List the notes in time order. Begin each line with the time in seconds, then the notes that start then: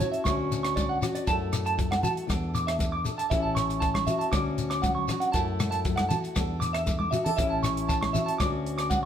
Already playing: C#4 E4
0.00 F#4, closed hi-hat, low conga, shekere
0.12 E5, closed hi-hat
0.24 D2 D3 C#4 D4 F#4 C#6, kick, cross-stick, closed hi-hat, high conga, shekere
0.52 closed hi-hat, shekere
0.63 C#6, cross-stick, closed hi-hat, shekere
0.76 D5, kick, closed hi-hat, high conga, shekere
0.89 F#5
1.02 F#4, cross-stick, closed hi-hat, low conga, shekere
1.15 D5, closed hi-hat, shekere
1.27 F#2 A3 E4 A4 A5, kick, closed hi-hat, shekere
1.53 cross-stick, closed hi-hat, shekere
1.66 A5, closed hi-hat, shekere
1.77 F#3, kick, closed hi-hat, shekere
1.91 F#5, cross-stick, high conga
2.02 F#4 A5, closed hi-hat, low conga, shekere
2.17 closed hi-hat
2.27 E2 E3 D4 A4, kick, cross-stick, closed hi-hat, high conga, shekere
2.54 D6, closed hi-hat, shekere
2.67 E5, cross-stick, closed hi-hat, shekere
2.79 A3, kick, closed hi-hat, high conga, shekere
2.92 D6
3.05 A4, closed hi-hat, low conga, shekere
3.18 A5, closed hi-hat, shekere
3.30 A1 A2 C#4 E4 A4 E5, kick, closed hi-hat, shekere
3.42 A5
3.55 C#6, cross-stick, closed hi-hat, shekere
3.70 closed hi-hat, shekere
3.80 E3 A5, kick, closed hi-hat, shekere
3.94 C#6, cross-stick, high conga
4.07 F#4 E5, closed hi-hat, low conga, shekere
4.19 A5, closed hi-hat
4.31 D2 D3 C#4 D4 F#4 D6, kick, cross-stick, closed hi-hat, high conga, shekere
4.58 closed hi-hat, shekere
4.70 D6, cross-stick, closed hi-hat, shekere
4.82 F#3 F#5, kick, closed hi-hat, high conga, shekere
4.95 C#6
5.08 F#4, cross-stick, closed hi-hat, low conga, shekere
5.20 F#5, closed hi-hat, shekere
5.32 F#2 A3 A5, kick, closed hi-hat, shekere
5.37 E4 A4
5.60 cross-stick, closed hi-hat, high conga, shekere
5.71 A5, closed hi-hat, shekere
5.85 F#3, kick, closed hi-hat, shekere
5.96 F#5, cross-stick, high conga
6.09 F#4 A5, closed hi-hat, low conga, shekere
6.24 closed hi-hat, shekere
6.36 E2 D4 A4, muted steel-string acoustic guitar stroke, kick, cross-stick, closed hi-hat, high conga, shekere
6.60 D6, closed hi-hat, shekere
6.73 E5, cross-stick, closed hi-hat, shekere
6.86 A3, kick, closed hi-hat, high conga, shekere
6.99 D6, high conga
7.11 F#4 E5, closed hi-hat, low conga, shekere
7.25 A4 A5, closed hi-hat, low conga, shekere
7.37 A1 A2 C#4 E4 A4 E5, kick, closed hi-hat, shekere
7.50 A5
7.63 C#6, cross-stick, closed hi-hat, shekere
7.77 closed hi-hat
7.89 E3 A5, kick, closed hi-hat, shekere
8.01 C#6, cross-stick, high conga
8.13 F#4 E5, closed hi-hat, low conga, shekere
8.26 A5, closed hi-hat
8.38 D2 D3 C#4 D4 F#4 D6, kick, cross-stick, closed hi-hat, high conga, shekere
8.66 closed hi-hat
8.78 D6, cross-stick, closed hi-hat, shekere
8.90 F#5, muted steel-string acoustic guitar stroke, kick, closed hi-hat, high conga, shekere